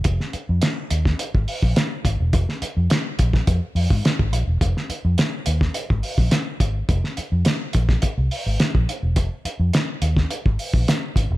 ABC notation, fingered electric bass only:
X:1
M:4/4
L:1/16
Q:1/4=105
K:Cm
V:1 name="Fingered electric bass" clef=bass
F,,, z2 F,, z2 E,,2 z A,,, z B,,, z2 A,,, =E,,, | F,,, z2 F,, z2 B,,,2 F,, z F,, A,, z A,,, B,,, =E,,, | F,,, z2 F,, z2 E,,2 z A,,, z B,,, z2 A,,,2 | F,,, z2 F,, z2 B,,,2 z C,, z A,,, z B,,, z =E,,, |
F,,, z2 F,, z2 E,,2 z A,,, z B,,, z2 A,,, =E,,, |]